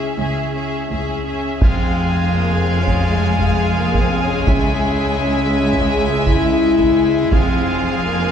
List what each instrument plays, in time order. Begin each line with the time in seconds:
Already playing: french horn section G#3 E4, viola section C#4, violin section G#4 E5
0.18 double bass section C#2, cello section C#2, viola section C#4, violin section G#4 E5
0.53 viola section C#4, violin section G#4 E5
0.90 double bass section C#2, cello section C#2, viola section C#4, violin section G#4 E5
1.26 viola section C#4, violin section G#4 E5
1.60 double bass section F1, cello section F2, pipe organ G#3 F4 G#4 G#5, french horn section C4, viola section G#4, violin section F5 G#5, taiko
2.32 french horn section A#3
2.57 french horn section C4
2.81 french horn section C#4
2.87 taiko
3.04 french horn section G#3
3.40 taiko
3.76 french horn section A#3
3.93 taiko
4.00 french horn section C4
4.24 french horn section C#4
4.46 double bass section C#2, cello section C#2, pipe organ E4, violin section E5, taiko
5.18 french horn section C#4
5.72 taiko
5.92 french horn section G#4
6.26 french horn section E4, taiko
6.79 taiko
7.32 double bass section F1, cello section F2, pipe organ G#3 F4 G#4 G#5, french horn section C4, viola section G#4, violin section F5 G#5, taiko
8.04 french horn section A#3